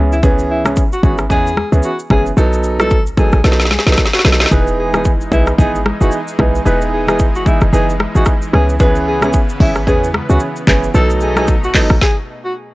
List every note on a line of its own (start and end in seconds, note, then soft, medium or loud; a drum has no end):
0.00 0.82 C#2 loud
0.00 0.15 E3 medium
0.00 0.15 B3 medium
0.00 0.15 C#4 medium
0.00 0.15 G#4 medium
0.12 0.22 E4 medium
0.12 shaker medium
0.23 0.61 E3 medium
0.23 0.61 B3 medium
0.23 0.62 C#4 medium
0.23 0.62 G#4 loud
0.23 kick loud
0.23 low conga medium
0.23 shaker medium
0.39 shaker medium
0.51 0.63 E4 medium
0.65 0.81 E3 medium
0.65 0.81 B3 medium
0.65 0.81 C#4 medium
0.65 0.81 G#4 medium
0.65 cross-stick loud
0.65 high conga medium
0.65 shaker soft
0.76 kick medium
0.76 shaker medium
0.93 1.02 F#4 medium
0.93 shaker soft
1.03 1.31 G#1 medium
1.03 1.22 E3 medium
1.03 1.22 B3 medium
1.03 1.22 C#4 medium
1.03 1.17 F#4 medium
1.03 1.22 G#4 medium
1.03 kick loud
1.03 high conga medium
1.03 low conga medium
1.03 shaker medium
1.18 cross-stick medium
1.18 shaker soft
1.30 1.64 E2 loud
1.30 1.48 E3 medium
1.30 1.48 B3 medium
1.30 1.49 C#4 medium
1.30 1.49 G#4 loud
1.30 1.70 G#4 loud
1.30 kick medium
1.30 shaker medium
1.47 shaker medium
1.57 cross-stick medium
1.57 high conga medium
1.72 1.81 C#2 medium
1.72 1.88 E3 medium
1.72 1.88 B3 medium
1.72 1.88 C#4 medium
1.72 1.88 G#4 medium
1.72 shaker medium
1.83 1.97 F#4 medium
1.83 shaker medium
1.99 shaker medium
2.10 2.32 F#1 loud
2.10 2.29 E3 medium
2.10 2.29 B3 medium
2.10 2.29 C#4 medium
2.10 2.29 G#4 medium
2.10 2.24 G#4 medium
2.10 kick loud
2.10 cross-stick medium
2.10 high conga medium
2.10 low conga medium
2.26 shaker medium
2.37 3.29 B1 loud
2.37 2.76 F#3 medium
2.37 2.76 B3 medium
2.37 2.76 D#4 medium
2.37 2.76 A4 loud
2.37 low conga medium
2.37 shaker medium
2.53 shaker soft
2.64 shaker medium
2.79 2.95 F#3 medium
2.79 2.95 B3 medium
2.79 2.95 D#4 medium
2.79 2.95 A4 medium
2.79 3.03 A4 medium
2.79 cross-stick loud
2.79 high conga medium
2.79 shaker soft
2.90 kick loud
2.90 shaker medium
3.06 shaker soft
3.17 3.36 F#3 medium
3.17 3.36 B3 medium
3.17 3.36 D#4 medium
3.17 3.41 G#4 medium
3.17 3.36 A4 medium
3.17 kick loud
3.17 high conga medium
3.17 low conga medium
3.17 shaker soft
3.32 3.42 A1 loud
3.32 cross-stick medium
3.32 shaker soft
3.44 3.78 B1 loud
3.44 3.63 F#3 medium
3.44 3.63 B3 medium
3.44 3.63 D#4 medium
3.44 3.63 A4 medium
3.44 snare medium
3.44 shaker medium
3.52 snare soft
3.60 snare medium
3.60 shaker medium
3.65 snare medium
3.71 3.85 G#4 medium
3.71 snare medium
3.71 high conga medium
3.79 snare medium
3.86 3.96 B1 medium
3.86 4.02 F#3 medium
3.86 4.02 B3 medium
3.86 4.02 D#4 medium
3.86 4.02 A4 medium
3.86 snare medium
3.86 shaker medium
3.92 snare medium
3.97 kick medium
3.97 snare medium
3.97 shaker medium
4.06 snare medium
4.13 4.23 F#4 medium
4.13 snare medium
4.13 shaker medium
4.19 snare medium
4.24 4.46 B1 medium
4.24 4.43 F#3 medium
4.24 4.43 B3 medium
4.24 4.43 D#4 medium
4.24 4.43 A4 medium
4.24 snare loud
4.24 high conga medium
4.24 low conga medium
4.24 shaker soft
4.32 snare medium
4.40 4.50 D#4 medium
4.40 snare loud
4.40 shaker medium
4.46 snare medium
4.51 5.28 E1 loud
4.51 4.90 E3 medium
4.51 10.90 E3 medium
4.51 8.49 G#3 medium
4.51 4.90 B3 medium
4.51 4.90 D#4 medium
4.51 8.49 D#4 medium
4.51 4.90 G#4 loud
4.51 4.65 B4 medium
4.51 kick loud
4.51 low conga medium
4.51 shaker medium
4.67 shaker medium
4.79 4.92 G#4 medium
4.93 5.09 E3 medium
4.93 5.09 B3 medium
4.93 5.09 D#4 medium
4.93 5.09 G#4 medium
4.93 5.04 G#4 medium
4.93 cross-stick loud
4.93 high conga medium
4.93 shaker soft
5.05 kick loud
5.05 shaker medium
5.21 shaker medium
5.32 5.53 B1 loud
5.32 5.50 E3 medium
5.32 5.50 B3 medium
5.32 5.50 D#4 medium
5.32 5.45 E4 medium
5.32 5.51 G#4 medium
5.32 kick loud
5.32 high conga medium
5.32 shaker soft
5.47 cross-stick medium
5.47 shaker soft
5.58 5.92 G#1 loud
5.58 5.77 E3 medium
5.58 5.77 B3 medium
5.58 5.77 D#4 medium
5.58 5.77 G#4 loud
5.58 5.72 G#4 medium
5.58 kick medium
5.58 shaker medium
5.75 shaker medium
5.86 cross-stick loud
5.86 high conga medium
6.01 6.10 F#1 medium
6.01 6.16 E3 medium
6.01 6.16 B3 medium
6.01 6.16 D#4 medium
6.01 6.11 F#4 medium
6.01 6.16 G#4 medium
6.01 shaker medium
6.12 shaker medium
6.28 shaker medium
6.39 6.60 B1 medium
6.39 6.57 E3 medium
6.39 6.57 B3 medium
6.39 6.58 D#4 medium
6.39 6.58 G#4 medium
6.39 kick medium
6.39 cross-stick medium
6.39 high conga medium
6.39 low conga medium
6.55 shaker medium
6.65 7.58 E1 loud
6.65 7.04 E3 medium
6.65 7.04 B3 medium
6.65 7.04 D#4 medium
6.65 7.04 G#4 loud
6.65 6.79 B4 medium
6.65 low conga medium
6.65 shaker medium
6.82 shaker medium
6.93 7.06 G#4 medium
7.07 7.23 E3 medium
7.07 7.23 B3 medium
7.07 7.23 D#4 medium
7.07 7.24 G#4 medium
7.07 7.18 G#4 medium
7.07 cross-stick loud
7.07 high conga medium
7.07 shaker medium
7.19 kick loud
7.19 shaker medium
7.35 7.45 F#4 medium
7.35 shaker medium
7.46 7.65 E3 medium
7.46 7.65 B3 medium
7.46 7.65 D#4 medium
7.46 7.60 E4 medium
7.46 7.65 G#4 medium
7.46 kick loud
7.46 high conga medium
7.46 shaker medium
7.61 7.71 F#1 loud
7.61 cross-stick medium
7.61 shaker soft
7.73 8.07 F#1 loud
7.73 7.91 E3 medium
7.73 7.91 B3 medium
7.73 7.91 D#4 medium
7.73 7.92 G#4 loud
7.73 7.87 G#4 medium
7.73 shaker medium
7.90 shaker medium
8.00 cross-stick loud
8.00 high conga medium
8.15 8.24 G#1 medium
8.15 8.30 E3 medium
8.15 8.31 B3 medium
8.15 8.31 D#4 medium
8.15 8.25 F#4 medium
8.15 8.31 G#4 medium
8.15 shaker medium
8.26 kick medium
8.26 cross-stick medium
8.26 shaker medium
8.42 shaker medium
8.53 9.39 C#2 loud
8.53 10.92 C#3 medium
8.53 8.72 E3 medium
8.53 10.92 B3 medium
8.53 8.72 B3 medium
8.53 8.72 C#4 medium
8.53 8.72 G#4 medium
8.53 8.67 G#4 medium
8.53 cross-stick medium
8.53 high conga medium
8.53 low conga medium
8.69 shaker medium
8.80 9.19 E3 loud
8.80 9.19 B3 medium
8.80 9.19 C#4 medium
8.80 9.19 G#4 loud
8.80 8.94 B4 loud
8.80 kick loud
8.80 low conga medium
8.80 shaker medium
8.95 shaker medium
9.08 9.21 G#4 medium
9.22 9.38 E3 medium
9.22 9.38 B3 medium
9.22 9.38 C#4 medium
9.22 9.38 G#4 medium
9.22 9.32 G#4 medium
9.22 cross-stick loud
9.22 high conga medium
9.22 shaker medium
9.33 kick loud
9.33 shaker medium
9.49 shaker medium
9.60 9.89 G#1 medium
9.60 9.79 E3 medium
9.60 9.79 B3 medium
9.60 9.79 C#4 medium
9.60 9.74 E4 medium
9.60 9.79 G#4 medium
9.60 kick loud
9.60 open hi-hat medium
9.60 high conga medium
9.60 shaker medium
9.75 cross-stick medium
9.75 shaker soft
9.87 10.21 E2 loud
9.87 10.05 E3 medium
9.87 10.06 B3 medium
9.87 10.06 C#4 medium
9.87 10.06 G#4 loud
9.87 10.01 G#4 medium
9.87 kick medium
9.87 shaker medium
10.04 shaker medium
10.14 cross-stick loud
10.14 high conga medium
10.29 10.39 C#2 medium
10.29 10.45 E3 medium
10.29 10.45 B3 medium
10.29 10.45 C#4 medium
10.29 10.39 F#4 medium
10.29 10.45 G#4 medium
10.29 shaker medium
10.40 shaker medium
10.56 shaker medium
10.67 10.89 F#1 loud
10.67 10.86 E3 medium
10.67 10.86 B3 medium
10.67 10.86 C#4 medium
10.67 10.86 G#4 medium
10.67 kick loud
10.67 cross-stick medium
10.67 clap medium
10.67 high conga medium
10.67 low conga medium
10.84 shaker medium
10.94 11.86 B1 loud
10.94 12.00 B2 medium
10.94 11.33 F#3 loud
10.94 12.00 A3 medium
10.94 11.33 B3 medium
10.94 12.00 D#4 medium
10.94 11.33 D#4 medium
10.94 11.33 A4 loud
10.94 11.08 A4 loud
10.94 low conga medium
10.94 shaker medium
11.10 shaker medium
11.21 11.35 G#4 medium
11.21 shaker medium
11.36 11.52 F#3 medium
11.36 11.52 B3 medium
11.36 11.52 D#4 medium
11.36 11.47 G#4 medium
11.36 11.52 A4 medium
11.36 cross-stick loud
11.36 high conga medium
11.36 shaker medium
11.48 kick medium
11.48 shaker medium
11.64 11.73 F#4 medium
11.64 shaker soft
11.74 11.93 F#3 medium
11.74 11.93 B3 medium
11.74 11.93 D#4 medium
11.74 11.88 D#4 medium
11.74 11.93 A4 medium
11.74 kick loud
11.74 clap medium
11.74 open hi-hat medium
11.74 high conga medium
11.74 shaker soft
11.89 11.99 A1 loud
11.89 cross-stick loud
11.89 shaker soft
12.01 12.15 G#4 medium
12.01 kick loud
12.01 snare medium
12.45 12.54 F#4 medium